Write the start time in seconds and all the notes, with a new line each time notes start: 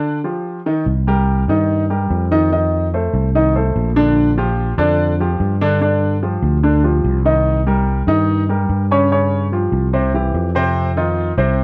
Already playing: D3 D4 D5
0.24 F3 F4 G4
0.66 D#3 D#4 D#5
0.86 C2
1.07 G3 G4 A#4
1.48 G2 D#3 D#4 D#5
1.90 G3 G4 A#4
2.11 F2
2.31 D#3 D#4 D#5
2.52 D#3 D#4 D#5
2.94 A3 A4 C5
3.14 C2
3.35 D#3 D#4 D#5
3.56 A3 A4 C5
3.76 A#1
3.96 D3 D4 D5
4.37 F3 F4 G4
4.78 F2 D3 D4 D5
5.20 F3 F4 G4
5.40 G2
5.61 D3 D4 D5
5.81 D3 D4 D5
6.23 F3 F4 G4
6.43 D2
6.63 D3 D4 D5
6.84 F3 F4 G4
7.04 C2
7.25 D#3 D#4 D#5
7.67 G3 G4 A#4
8.07 G2 D#3 D#4 D#5
8.49 G3 G4 A#4
8.70 G2
8.91 C#3 C#4 C#5
9.12 C#3 C#4 C#5
9.52 F3 F4 G4
9.72 C2
9.93 C3 C4 C5
10.14 E3 E4 G4
10.34 F2
10.55 C3 C4 C5
10.97 D#3 D#4 F4
11.38 C2 C3 C4 C5